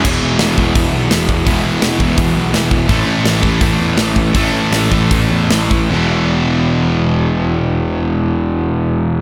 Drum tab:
CC |x-------|--------|--------|--------|
HH |--o-o-o-|o-o-o-o-|o-o-o-o-|o-o-o-o-|
SD |--o---o-|--o---o-|--o---o-|--o---o-|
BD |o--oo--o|o--oo--o|o--oo--o|o--oo--o|

CC |--------|--------|
HH |--------|--------|
SD |--------|--------|
BD |--------|--------|